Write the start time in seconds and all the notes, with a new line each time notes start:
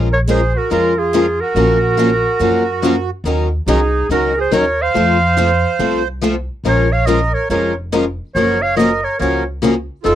Already playing: A#1
0.11 A#4 C#5
0.28 F3 G#3 C#4 F4 G#4 A#4 C5
0.55 F#4 A#4
0.70 F2 F3 G#3 C#4 F4 A#4
0.97 F4 G#4
1.14 F3 G#3 C#4 F4 A#4
1.41 F#4 A#4
1.55 A#1 F3 F#3 A#3 C#4 F4 F#4 A#4
1.97 F3 F#3 A#3 C#4 F4 F#4 A#4
2.39 F#2 F3 F#3 A#3 C#4 F4 F#4 A#4
2.82 F3 F#3 A#3 C#4 F4 F#4 A#4
3.24 D#2 D#3 F#3 C#4 D#4 A#4
3.67 C2 D#3 F#3 C#4 D#4 G#4 A#4
4.09 C#2 D#3 F#3 C#4 D#4 F#4 A#4
4.37 G#4 C5
4.51 D#2 D#3 F#3 C#4 D#4 A#4 C#5
4.82 C5 F5
4.94 F2 F3 A3 C4 F4 A4
5.37 F3 A3 C4 F4 A4
5.79 C2 F3 A3 C4 F4 A4
6.21 F3 A3 C4 F4 A4
6.64 A#1 F3 G#3 C#4 F4 A#4
6.68 C#5
6.91 C#5 F5
7.06 F3 G#3 C#4 F4 A#4 D#5
7.34 A#4 C#5
7.50 F1 F3 G#3 C#4 F4 A#4 C#5
7.92 F3 G#3 C#4 F4 A#4
8.35 F#1 C#3 F3 F#3 A#3 C#4 F4 F#4 A#4 C#5
8.62 C#5 F5
8.76 C#3 F3 F#3 A#3 C#4 F#4 A#4 D#5
8.81 F4 A#4
9.02 A#4 C#5
9.18 C#2 C#3 F3 F#3 A#3 C#4 F#4 A#4 C#5
9.22 F4 A#4
9.62 C#3 F3 F#3 A#3 C#4 F4 F#4 A#4
10.03 F1 F3 C4 D#4 F4 A4